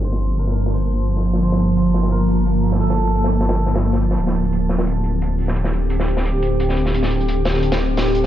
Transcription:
<<
  \new Staff \with { instrumentName = "Clean electric guitar" } { \time 4/4 \key g \minor \tempo 4 = 174 c''4 bes'4 c''2 | c''2 bes'2 | a'2.~ a'8 r8 | r1 |
r1 | r1 | }
  \new Staff \with { instrumentName = "Ambient pad" } { \time 4/4 \key g \minor <f bes a''>1~ | <f bes a''>1~ | <f bes a''>1 | <d c' g'>1~ |
<d c' g'>1~ | <d c' g'>1 | }
  \new Staff \with { instrumentName = "Detuned saw bass" } { \clef bass \time 4/4 \key g \minor g,,1~ | g,,1~ | g,,1 | d,,1~ |
d,,1~ | d,,1 | }
  \new DrumStaff \with { instrumentName = "Drums" } \drummode { \time 4/4 hh16 sn16 hh8 hh16 sn16 hh16 sn16 hh8 hh8 hh16 sn16 hh16 sn16 | hh16 sn16 hh16 hh16 hh8 <hh sn>16 sn16 hh8 hh8 hh8 hho16 sn16 | hh16 sn16 hh8 hh16 sn16 hh16 sn16 <hh sn>8 <hh sn>16 <hh sn>16 r16 <hh sn>16 hh16 sn16 | hh16 sn16 hh16 hh16 hh8 <hh sn>16 sn16 hh8 hh8 hh8 hho16 sn16 |
hh16 sn16 hh8 hh16 sn16 hh16 sn16 hh8 hh8 hh16 sn16 hh16 sn16 | hh16 sn16 hh16 hh16 hh8 <hh sn>16 sn16 hh16 <hh sn>8. <hh sn>16 sn16 hh8 | }
>>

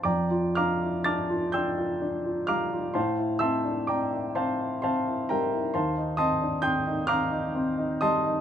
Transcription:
\new Staff \with { instrumentName = "Grand piano" } { \time 3/4 \key f \major \tempo 4 = 65 << { <d'' g'' bes'' d'''>8 <f'' bes'' d''' f'''>8 <a'' d''' f''' a'''>8 <g'' c''' e''' g'''>4 <f'' bes'' d''' f'''>8 | <c'' f'' a'' c'''>8 <e'' a'' c''' e'''>8 <d'' g'' bes'' d'''>8 <c'' f'' a'' c'''>8 <c'' f'' a'' c'''>8 <bes' e'' g'' bes''>8 | <c'' f'' a'' c'''>8 <ees'' a'' c''' ees'''>8 <g'' c''' ees''' g'''>8 <f'' bes'' d''' f'''>4 <ees'' a'' c''' ees'''>8 | } \\ { f,16 f'16 d'16 e'16 d'16 f'16 d'16 f'16 d'16 f'16 g16 f'16 | a,16 e'16 c'16 d'16 c'16 e'16 c'16 e'16 c'16 e'16 g16 e'16 | ees,16 ees'16 c'16 d'16 c'16 ees'16 c'16 ees'16 c'16 ees'16 g16 ees'16 | } >> }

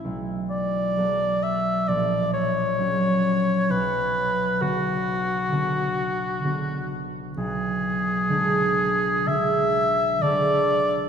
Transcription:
<<
  \new Staff \with { instrumentName = "Oboe" } { \time 4/4 \key b \dorian \tempo 4 = 65 r8 d''4 e''8 d''8 cis''4. | b'4 fis'2~ fis'8 r8 | gis'2 e''4 d''4 | }
  \new Staff \with { instrumentName = "Harp" } { \clef bass \time 4/4 \key b \dorian <b,, a>4 <fis b a'>4 ais,,4 <fis cis' fis'>4 | b,,4 <d b fis'>4 <d b fis'>4 <d b fis'>4 | b,,4 <d gis d'>4 <d gis d'>4 <d gis d'>4 | }
>>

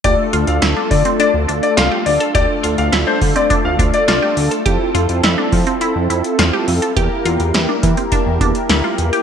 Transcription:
<<
  \new Staff \with { instrumentName = "Grand piano" } { \time 4/4 \key d \minor \tempo 4 = 104 d''16 r8 f''16 r8 d''8 d''16 r8 d''16 f''16 r16 d''16 r16 | d''16 r8 f''16 r16 c''16 r16 d''16 r16 f''16 r16 d''16 d''8. r16 | r1 | r1 | }
  \new Staff \with { instrumentName = "Analog polysynth" } { \time 4/4 \key d \minor <a d' f' a'>1~ | <a d' f' a'>1 | <c' e' f' a'>1 | <bes e' g' bes'>1 | }
  \new Staff \with { instrumentName = "Synth arpeggio sound" } { \time 4/4 \key d \minor g'8 f'8 e'16 d'8 c'16 d'8 d'8 f'16 g'8 a'16 | g'8 f'8 e'16 d'8 c'16 d'8 d'8 f'16 g'8 a'16 | g'8 f'8 e'16 d'8 c'16 e'8 e'8 f'16 g'8 a'16 | g'8 f'8 e'16 d'8 c'16 d'8 d'8 e'16 f'8 g'16 | }
  \new Staff \with { instrumentName = "Analog synth bass" } { \clef bass \time 4/4 \key d \minor d,16 r16 d,16 d,16 d,16 r16 d16 r8 d,16 d,16 r16 c,16 r16 d,16 r16 | d,16 r16 d,16 d,16 d,16 r16 d16 r8 d,16 d,16 r16 c,16 r16 d,16 r16 | f,16 r16 f,16 f,16 f,16 r16 f16 r8 f,16 f,16 r16 e,16 r16 f,16 r16 | e,16 r16 e,16 e,16 e,16 r16 e16 r8 e,16 e,16 r16 d,16 r16 e,16 r16 | }
  \new DrumStaff \with { instrumentName = "Drums" } \drummode { \time 4/4 <hh bd>8 hh16 hh16 <hh sn>8 <hho bd>16 hh16 hh8 hh16 hh16 <hh sn>8 hho16 hh16 | <hh bd>8 hh16 hh16 <hh sn>8 <hho bd>16 hh16 <hh bd>8 <hh bd>16 hh16 <hh sn>8 hho16 hh16 | <hh bd>8 hh16 hh16 <hh sn>8 <hho bd>16 hh16 hh8 hh16 hh16 <hh sn>8 hho16 hh16 | <hh bd>8 hh16 hh16 <hh sn>8 <hh bd>16 hh16 <hh bd>8 <hh bd>16 hh16 <hh sn>8 hh16 hh16 | }
>>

